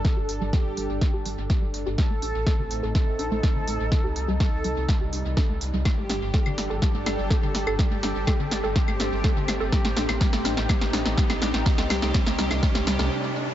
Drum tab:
HH |--o---o---o---o-|--o---o---o---o-|--o---o---o---o-|--o---o---o---o-|
CL |----------------|----------------|----------------|x----x----x----x|
SD |o---o---o---o---|o---o---o---o---|o---o---o---o---|o-o-o-o-o-o-o-o-|
BD |o---o---o---o---|o---o---o---o---|o---o---o---o---|o---o---o---o---|

HH |--o---o---o---o-|--o---o---o---o-|--o---o---o-----|
CL |----x----x----x-|---x----x----x--|--x----x--------|
SD |o-o-o-o-o-o-o-o-|oooooooooooooooo|oooooooooooo----|
BD |o---o---o---o---|o---o---o---o---|o---o---o-------|